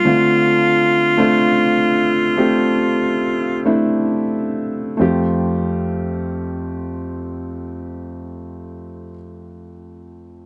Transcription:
<<
  \new Staff \with { instrumentName = "Alto saxophone" } { \time 4/4 \key f \major \tempo 4 = 44 f'2. r4 | r1 | }
  \new Staff \with { instrumentName = "Grand piano" } { \time 4/4 \key f \major <a c' d' f'>4 <a c' d' f'>4 <a c' d' g'>4 <a c' d' e'>4 | <a c' f' g'>1 | }
  \new Staff \with { instrumentName = "Grand piano" } { \clef bass \time 4/4 \key f \major d4. r2 r8 | f,1 | }
>>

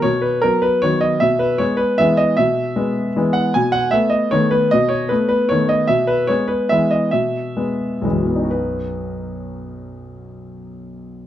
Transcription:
<<
  \new Staff \with { instrumentName = "Grand piano" } { \time 3/4 \key b \major \tempo 4 = 150 cis''8 b'8 ais'8 b'8 cis''8 dis''8 | e''8 b'8 cis''8 b'8 e''8 dis''8 | e''2~ e''8 fis''8 | gis''8 fis''8 e''8 dis''8 cis''8 b'8 |
dis''8 cis''8 b'8 b'8 cis''8 dis''8 | e''8 b'8 cis''8 b'8 e''8 dis''8 | e''2~ e''8 r8 | <b,, fis, fis b dis' fis' b'>2.~ |
<b,, fis, fis b dis' fis' b'>2. | }
  \new Staff \with { instrumentName = "Grand piano" } { \clef bass \time 3/4 \key b \major b,4 <fis b>4 <dis fis b>4 | b,4 <gis b>4 <e gis b>4 | b,4 <gis b>4 <e gis b>4 | b,4 <a b>4 <dis a b>4 |
b,4 <a b>4 <dis a b>4 | b,4 <gis b>4 <e gis b>4 | b,4 <gis b>4 <e gis b>4 | r2. |
r2. | }
>>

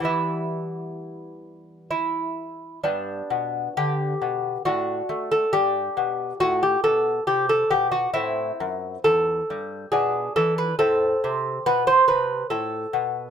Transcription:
<<
  \new Staff \with { instrumentName = "Lute" } { \time 3/4 \key e \minor \tempo 4 = 68 << { e'2 e'4 | \key g \major d'4 g'4 fis'8. a'16 | g'4 fis'16 g'16 a'8 g'16 a'16 g'16 fis'16 | e'4 a'4 gis'8 a'16 b'16 |
a'4 b'16 c''16 b'8 a'4 | } \\ { r2. | b2 d'4 | d'2. | c'2 d'4 |
c'2. | } >> }
  \new Staff \with { instrumentName = "Lute" } { \clef bass \time 3/4 \key e \minor <e g b>2. | \key g \major g,8 b,8 d8 b,8 a,8 a8 | g,8 b,8 a,8 b,8 c8 b,8 | a,8 fis,8 e,8 g,8 b,8 e8 |
a,8 c8 b,8 c8 a,8 b,8 | }
>>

